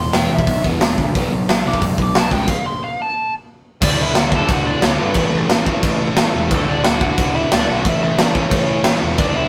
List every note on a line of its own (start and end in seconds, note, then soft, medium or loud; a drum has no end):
0.00 0.11 E1 medium
0.00 0.11 E2 medium
0.00 0.13 E2 medium
0.00 0.11 B2 medium
0.00 0.13 B2 medium
0.00 0.15 C6 medium
0.12 0.27 E1 medium
0.12 0.29 E2 medium
0.12 0.29 B2 medium
0.12 0.30 E3 loud
0.12 0.33 G5 medium
0.12 snare loud
0.12 open hi-hat medium
0.30 0.44 E1 medium
0.30 0.45 E2 medium
0.30 0.46 B2 medium
0.30 0.65 E5 medium
0.39 kick medium
0.47 0.61 B1 medium
0.47 0.62 E2 medium
0.47 0.62 B2 medium
0.47 kick loud
0.47 open hi-hat medium
0.63 0.77 E1 medium
0.63 0.79 E2 medium
0.63 0.80 B2 loud
0.63 0.81 E3 loud
0.63 kick medium
0.80 0.94 E1 loud
0.80 0.96 E2 medium
0.80 0.96 B2 medium
0.80 snare loud
0.80 open hi-hat medium
0.98 1.11 D2 medium
0.98 1.13 E2 medium
0.98 1.13 B2 medium
0.98 kick medium
1.15 1.29 B1 medium
1.15 1.31 B2 medium
1.15 1.31 F#3 loud
1.15 1.31 B3 loud
1.15 kick loud
1.15 open hi-hat medium
1.31 1.45 B1 medium
1.31 1.47 B2 medium
1.31 1.47 F#3 medium
1.48 1.62 B1 medium
1.48 1.63 B2 medium
1.48 1.64 F#3 medium
1.48 snare loud
1.48 open hi-hat medium
1.65 1.79 B1 medium
1.65 1.80 B2 loud
1.65 1.80 F#3 medium
1.65 1.81 B3 loud
1.65 1.83 D6 loud
1.73 kick medium
1.81 1.95 F#1 medium
1.81 1.97 B2 medium
1.81 1.97 F#3 medium
1.81 kick loud
1.81 open hi-hat medium
1.98 2.12 B1 loud
1.98 2.13 B2 medium
1.98 2.14 F#3 medium
1.98 kick medium
2.02 2.17 D6 medium
2.14 2.29 B1 medium
2.14 2.30 B2 medium
2.14 2.30 F#3 medium
2.14 2.33 A5 medium
2.14 snare loud
2.14 open hi-hat medium
2.31 2.45 C#2 medium
2.31 2.47 B2 loud
2.31 2.48 F#3 medium
2.31 2.48 B3 loud
2.31 2.49 G5 medium
2.31 kick medium
2.47 2.65 F5 loud
2.47 kick loud
2.47 crash loud
2.66 2.82 C6 medium
2.84 2.99 F5 medium
3.02 3.33 A5 loud
3.81 3.94 D1 medium
3.81 4.15 D2 loud
3.81 4.16 A2 loud
3.81 4.16 D3 loud
3.81 4.00 D4 medium
3.81 4.01 D5 loud
3.81 kick loud
3.81 crash loud
3.81 crash medium
3.99 4.11 D1 loud
3.99 4.17 E4 medium
3.99 4.18 E5 loud
4.15 4.41 D1 loud
4.15 4.32 D2 medium
4.15 4.31 A2 medium
4.15 4.31 D3 medium
4.15 4.33 F#4 medium
4.15 4.36 F#5 loud
4.15 snare loud
4.15 crash medium
4.32 4.48 D2 medium
4.32 4.49 A2 medium
4.32 4.50 D3 loud
4.32 4.50 A4 medium
4.32 kick loud
4.36 4.52 A5 loud
4.49 4.74 D1 medium
4.49 4.81 D2 loud
4.49 4.82 A2 loud
4.49 4.82 D3 loud
4.49 4.66 F#4 medium
4.49 kick loud
4.49 crash medium
4.53 4.68 F#5 loud
4.66 4.82 D4 medium
4.66 4.84 D5 medium
4.82 4.95 D1 loud
4.82 5.01 D2 medium
4.82 5.01 A2 loud
4.82 4.99 D3 medium
4.82 4.88 C#4 medium
4.82 4.89 C#5 loud
4.82 snare loud
4.82 crash medium
5.00 5.12 G1 loud
5.00 5.15 D2 medium
5.00 5.14 A2 medium
5.00 5.16 D3 medium
5.00 5.32 B3 medium
5.00 5.34 B4 medium
5.14 5.28 A1 medium
5.14 5.48 A2 medium
5.14 5.49 E3 loud
5.14 5.51 A3 loud
5.14 kick loud
5.14 crash medium
5.33 5.45 A1 loud
5.48 5.73 A1 loud
5.48 5.68 A2 medium
5.48 5.67 E3 medium
5.48 5.67 A3 medium
5.48 snare loud
5.48 crash medium
5.66 5.83 A2 medium
5.66 5.84 E3 loud
5.66 5.86 A3 loud
5.66 kick medium
5.82 6.07 A1 medium
5.82 6.16 A2 loud
5.82 6.17 E3 loud
5.82 6.19 A3 loud
5.82 kick loud
5.82 crash medium
6.16 6.29 A1 loud
6.16 6.36 A2 medium
6.16 6.34 E3 medium
6.16 6.34 A3 medium
6.16 snare loud
6.16 crash medium
6.34 6.51 E1 medium
6.34 6.51 A2 medium
6.34 6.50 E3 medium
6.34 6.53 A3 loud
6.51 6.63 D1 loud
6.51 6.84 D2 loud
6.51 6.85 A2 loud
6.51 6.86 D3 loud
6.51 6.68 A3 medium
6.51 kick loud
6.51 crash medium
6.56 6.70 A4 medium
6.68 6.80 D1 loud
6.68 6.84 D4 medium
6.68 6.85 D5 medium
6.83 7.09 D1 medium
6.83 7.02 D2 medium
6.83 7.02 A2 medium
6.83 7.01 D3 medium
6.83 6.99 F#4 medium
6.83 7.01 F#5 loud
6.83 snare loud
6.83 crash medium
7.01 7.17 D2 medium
7.01 7.19 A2 medium
7.01 7.19 D3 loud
7.01 7.32 F#4 medium
7.01 7.33 F#5 loud
7.01 kick loud
7.18 7.42 D1 medium
7.18 7.51 D2 loud
7.18 7.52 A2 loud
7.18 7.52 D3 loud
7.18 kick loud
7.18 crash medium
7.35 7.50 E4 medium
7.35 7.52 E5 medium
7.52 7.64 D1 loud
7.52 7.69 D2 medium
7.52 7.69 A2 medium
7.52 7.68 D3 loud
7.52 7.67 D4 medium
7.52 7.69 D5 medium
7.52 snare loud
7.52 crash medium
7.69 7.81 B1 medium
7.69 7.85 D2 medium
7.69 7.84 A2 medium
7.69 7.84 D3 medium
7.69 7.85 F#4 medium
7.69 7.88 F#5 medium
7.85 7.97 A1 medium
7.85 8.18 A2 loud
7.85 8.19 E3 loud
7.85 8.20 A3 loud
7.85 8.02 E5 loud
7.85 kick loud
7.85 crash medium
7.89 8.02 E4 medium
8.02 8.14 A1 loud
8.02 8.18 E4 medium
8.02 8.19 E5 loud
8.18 8.43 A1 loud
8.18 8.37 A2 medium
8.18 8.36 E3 medium
8.18 8.37 A3 medium
8.18 8.34 D4 medium
8.18 8.35 D5 medium
8.18 snare loud
8.18 crash medium
8.34 8.51 A2 medium
8.34 8.52 E3 medium
8.34 8.54 A3 medium
8.34 8.50 C#4 medium
8.34 8.50 C#5 medium
8.34 kick medium
8.51 8.76 A1 medium
8.51 8.85 A2 loud
8.51 8.86 E3 loud
8.51 8.87 A3 loud
8.51 8.99 C#4 medium
8.51 8.98 C#5 medium
8.51 kick loud
8.51 crash medium
8.84 8.97 A1 medium
8.84 9.03 A2 medium
8.84 9.03 E3 medium
8.84 9.03 A3 medium
8.84 snare loud
8.84 crash medium
9.02 9.14 E1 medium
9.02 9.18 A2 medium
9.02 9.19 E3 medium
9.02 9.20 A3 loud
9.18 9.31 D1 medium
9.18 9.48 D2 loud
9.18 9.48 D2 medium
9.18 9.48 A2 loud
9.18 9.48 A2 medium
9.18 9.48 D3 loud
9.18 9.35 D4 medium
9.18 9.35 D5 loud
9.18 kick loud
9.18 crash medium
9.35 9.47 D1 medium
9.35 9.48 E4 medium
9.35 9.48 E5 loud